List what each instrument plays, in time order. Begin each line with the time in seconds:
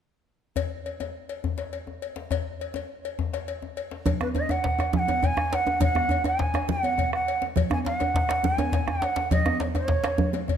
0.56 cowbell, djembe tone, djembe bass
0.86 cowbell, djembe slap
1.00 cowbell, djembe slap, djembe tone
1.29 cowbell
1.44 djembe tone, djembe bass
1.58 cowbell, djembe slap
1.73 cowbell
1.87 djembe tone
2.02 cowbell
2.16 djembe slap
2.31 cowbell, djembe tone, djembe bass
2.60 cowbell, djembe slap
2.74 cowbell, djembe slap, djembe tone
3.05 cowbell
3.19 djembe tone, djembe bass
3.33 cowbell, djembe slap
3.48 cowbell
3.62 djembe tone
3.77 cowbell
3.91 djembe slap
4.06 bombo low, cowbell, djembe slap, djembe tone, low conga, djembe bass
4.20 bansuri B4, bombo rim, high conga, djembe tone
4.35 bansuri D#5, cowbell, djembe tone
4.49 bansuri F#5, bombo rim, cowbell, djembe slap, djembe tone
4.64 bombo low, djembe slap
4.79 bombo rim, cowbell, djembe slap, djembe tone
4.93 bansuri G#5, djembe tone, low conga, djembe bass
4.99 bansuri F#5
5.08 cowbell, djembe slap, high conga, djembe tone
5.23 bansuri G#5, bombo low, cowbell, djembe tone
5.37 bombo rim, djembe tone
5.53 bansuri F#5, cowbell, djembe slap
5.67 djembe slap, djembe tone
5.80 bansuri F#5, bombo low, cowbell, djembe slap, djembe tone, low conga, djembe bass
5.95 bombo rim, djembe tone, high conga
6.09 cowbell, djembe tone
6.24 bansuri G#5, bombo rim, cowbell, djembe slap, djembe tone
6.39 bombo rim, bombo low, djembe slap
6.54 bombo rim, cowbell, djembe slap, djembe tone
6.69 bansuri F#5, djembe bass, low conga
6.83 cowbell, high conga
6.98 bombo low, cowbell, djembe tone
7.12 bansuri F#5, bombo rim, djembe slap
7.28 cowbell
7.42 djembe slap, djembe tone
7.56 bombo low, cowbell, djembe slap, low conga, djembe bass
7.70 bansuri G#5, bombo rim, high conga, djembe tone
7.85 bansuri F#5, cowbell, djembe slap, djembe tone
8.00 bombo rim, cowbell, djembe slap, djembe tone
8.14 bombo rim, bombo low, djembe slap
8.29 bombo rim, cowbell, djembe slap, djembe tone
8.31 djembe slap
8.44 bansuri G#5, djembe tone, djembe bass, low conga
8.58 cowbell, djembe slap, high conga, djembe tone
8.72 bombo low, cowbell, djembe slap, djembe tone
8.87 bansuri F#5, bombo rim, djembe slap, djembe tone
9.02 cowbell, djembe slap
9.16 djembe slap, djembe tone
9.31 bansuri D#5, bombo rim, bombo low, cowbell, djembe tone, low conga, djembe bass
9.46 bombo rim, djembe tone, high conga
9.60 cowbell, djembe slap, djembe tone
9.75 bansuri C5, bombo rim, cowbell, djembe slap, djembe tone, high conga
9.87 bansuri C#5, bombo rim, bombo low, djembe slap, high conga
10.04 bombo rim, cowbell, djembe slap, djembe tone
10.18 bombo rim, djembe slap, djembe tone, djembe bass, low conga
10.33 cowbell, djembe slap, high conga
10.48 bombo low, cowbell, high conga, djembe tone